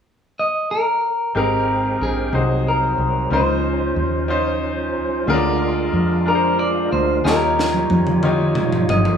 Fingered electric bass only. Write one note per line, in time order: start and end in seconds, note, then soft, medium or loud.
1.35 1.97 G#1 medium
2.01 2.31 A#1 medium
2.33 2.95 C2 medium
2.98 3.29 C2 medium
3.31 3.93 C#2 medium
3.96 4.95 D#2 medium
4.95 5.26 C#2 medium
5.28 5.90 D2 medium
5.93 6.88 F2 medium
6.92 7.23 D2 medium
7.25 7.87 D#2 medium
7.91 8.85 F2 medium
8.88 9.17 G1 medium